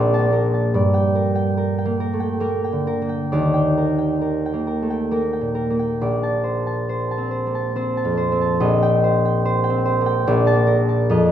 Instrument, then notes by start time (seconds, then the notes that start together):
harp
Already playing: A#1 A#3 D5
0.14 A5
0.19 A#3
0.32 A#4
0.54 A5
0.74 G2 D5
0.94 G5
1.15 A#4
1.35 G5
1.57 A#4
1.78 G5
1.85 A#3
2.00 A#4
2.13 A3
2.20 G5
2.40 A#3 A#4
2.64 G5
2.72 D3
2.87 A#4
3.02 A#3
3.09 G5
3.32 D#2 D5
3.54 G5
3.77 A#4
3.98 G5
4.21 A#4
4.46 G5
4.53 A#3
4.67 A#4
4.82 A3
4.90 G5
5.11 A#3 A#4
5.33 G5
5.41 A#2
5.55 A#4
5.70 A#3
5.79 G5
6.01 A#1 D5
6.23 A5
6.44 C5
6.67 A5
6.89 C5
7.11 A5
7.18 C4
7.31 C5
7.47 A#3
7.55 A5
7.76 C4 C5
7.97 A5
8.05 F2
8.17 C5
8.32 C4
8.41 A5
8.60 A#1 D#5
8.82 G5
9.04 C5
9.25 G5
9.45 C5
9.64 G5
9.70 C4
9.85 C5
10.01 A#3
10.06 G5
10.27 A#1 D5
10.47 A5
10.54 A#3
10.67 A#4
10.89 A5
11.10 F2 D#5